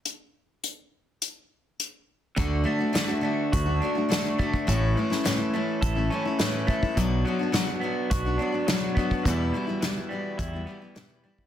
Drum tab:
HH |x---x---x---x---|x---x---x---x---|x---x---x---x---|x---x---x---x---|
SD |----------------|----o-------o---|---oo-------o---|----o-------o---|
BD |----------------|o-------o-----oo|o-------o-----oo|o-------o-----oo|

HH |x---x---x---x---|
SD |----o-------o---|
BD |o-------o------o|